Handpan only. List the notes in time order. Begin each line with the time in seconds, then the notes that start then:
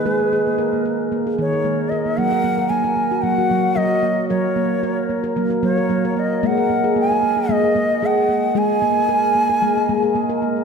0.05 G#3 G#4
0.20 A#3
0.33 G#4
0.47 A#3
0.58 A#4
0.73 A#3
0.85 A#4
1.12 A#3
1.27 G#4
1.38 D#3 A#3
1.53 A#4
1.64 G#3 A#3
1.92 A#4
2.06 A#3
2.18 F#3 A#3
2.32 A#4
2.44 A#3
2.58 A#4
2.71 A#3
2.84 A#4
2.97 A#3
3.12 F#4
3.23 F#3 A#3
3.38 F#4
3.50 F#3 A#3
3.76 F#3 A#4
4.03 A#3
4.30 F#3 A#4
4.56 A#3
4.83 A#4
5.10 A#3
5.24 A#4
5.36 F#3 A#3
5.50 A#4
5.63 F#3 A#3
5.77 A#4
5.89 F#3 A#3
6.05 A#4
6.17 A#3
6.43 G#3 A#3
6.57 A#4
6.70 A#3
6.84 G#4
6.96 A#3
7.11 A#4
7.23 A#3
7.37 G#4
7.49 G#3 A#3
7.64 G#4
7.75 G#3 A#3
8.02 G#3 G#4
8.29 A#3
8.55 G#3 G#4
8.82 A#3
9.09 A#4
9.35 A#3
9.50 A#4
9.62 G#3 A#3
9.77 G#4
9.89 G#3 A#3
10.03 G#4
10.15 G#3 A#3
10.29 A#4
10.42 A#3